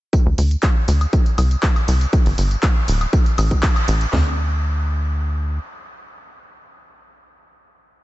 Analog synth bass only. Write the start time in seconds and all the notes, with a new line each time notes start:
0.26 D2
0.38 D2
0.88 D2
1.38 C2
1.88 C2
2.26 G1
2.38 G1
2.88 D1
3.38 A1
3.88 A1
4.13 D2